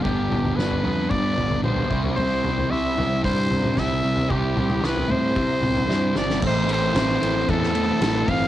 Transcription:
<<
  \new Staff \with { instrumentName = "Trumpet" } { \time 4/4 \key a \minor \tempo 4 = 113 g'4 b'4 d''4 c''8. r16 | c''4 e''4 c''4 e''4 | g'4 b'8 c''2 d''8 | c''8 c''4. a'4. f''8 | }
  \new Staff \with { instrumentName = "Distorted electric guitar" } { \time 4/4 \key a \minor <g, d g b d'>4 <d g b d'>8 <g b d'>8 <d g b d'>4 <g, d g b d'>8 <c g c' e'>8 | <c g c' e'>4 <c g c' e'>8 <g c' e'>8 <c g c' e'>4 <c g c' e'>8 <g c' e'>8 | <c g c' e'>4 <c g c' e'>8 <g c' e'>8 <c g c' e'>4 <c g c' e'>8 <g c' e'>8 | <a, e a c' e'>8 <a, e a c' e'>8 <a, e a c' e'>8 <a, e a c' e'>8 <a, e a c' e'>8 <a, e a c' e'>8 <a, e a c' e'>8 <a, e a c' e'>8 | }
  \new Staff \with { instrumentName = "Picked electric bass" } { \clef bass \time 4/4 \key a \minor g,,8 g,,8 g,,8 f,8 g,8 g,,8 b,,8 c,8 | c,8 c,8 c,8 c,8 g,8 g,8 c,8 c,8 | c,8 c,8 c,8 a,8 c8 c,8 g,8 g,,8 | a,,8 a,,8 a,,8 a,,8 e,4 a,,8 g,,8 | }
  \new DrumStaff \with { instrumentName = "Drums" } \drummode { \time 4/4 <bd tomfh>8 <tomfh toml>16 tomfh16 sn16 tomfh16 tomfh8 <bd tomfh>8 <tomfh toml>16 tomfh16 toml16 tomfh16 bd16 tomfh16 | tomfh8 tomfh16 tomfh16 r8 tomfh8 <bd tomfh>8 tomfh16 <tomfh toml>16 <bd sn>8. tomfh16 | <bd tomfh>8 <tomfh toml>16 tomfh16 sn16 tomfh16 tomfh8 <bd tomfh>8 <tomfh toml>16 tomfh16 sn8 sn16 sn16 | <cymc bd>8 cymr8 <cymr sn>8 cymr8 <bd cymr>16 sn16 cymr8 <cymr sn>8 <bd cymr>8 | }
>>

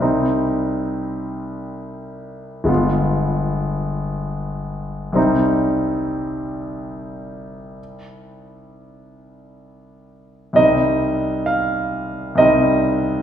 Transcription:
<<
  \new Staff \with { instrumentName = "Grand piano" } { \time 3/4 \key c \minor \tempo 4 = 68 r2. | r2. | r2. | r2. |
ees''4 f''4 ees''4 | }
  \new Staff \with { instrumentName = "Grand piano" } { \time 3/4 \key c \minor <c, g c' ees'>2. | <g,, aes b f'>2. | <c, g c' ees'>2.~ | <c, g c' ees'>2. |
<c, g c' ees'>2 <c, g c' ees'>4 | }
>>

